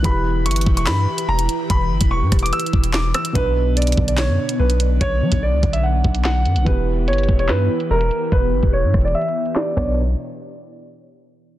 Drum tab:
CC |------------------------------------------------------------------------------------------------|------------------------------------------------------------------------------------------------|------------------------------------------------------------------------------------------------|------------------------------------------------------------------------------------------------|
HH |x-----------------------x--x--x--x--------x-----------------------x-----------x-----x-----------|x-----------------x-----------------x---x---x---x---x---x---------x-----------------x-----x-----|x-----------------------x--x--x--x--------x-----------------------x-----------x-----x-----------|x-----------------x-----------------x-----x-----------------------x-----------------x-----x-----|
CP |------------------------------------------------x-----------------------------------------------|------------------------------------------------------------------------x-----------------------|------------------------------------------------x-----------------------------------------------|------------------------------------------------------------------------x-----------------------|
SD |------------------------------------------------o-----------------------------------------------|------------------------------------r-----------------------------------o-----------r-----------|------------------------------------------------o-----------------------------------------------|------------------------------------------------------------------------o-----------------------|
BD |o-----------------------------------o-----------------------------------------------------------|o-----------------o-----------------o-----------------------o-----------------------------------|o-----------------------------------o-----------------------------------------------------------|o-----------------o-----------------o-----------------------o-----------------------------------|

CC |------------------------------------------------------------------------------------------------|------------------------------------------------------------------------------------x-----------|------------------------------------------------------------------------------------------------|
HH |x-----------------------x--x--x--x--------x-----------------------x-----------x-----x-----------|x-----------------x-----------------x---x---x---x---x---x---------x-----------------------------|------------------------------------------------------------------------------------------------|
CP |------------------------------------------------x-----------------------------------------------|------------------------------------------------------------------------x-----------------------|------------------------------------------------------------------------------------------------|
SD |------------------------------------------------o-----------------------------------------------|------------------------------------r-----------------------------------o-----------------------|------------------------------------------------------------------------------------------------|
BD |o-----------------------------------o-----------------------------------------------------------|o-----------------o-----------------o-----------------------------------------------o-----------|------------------------------------------------------------------------------------------------|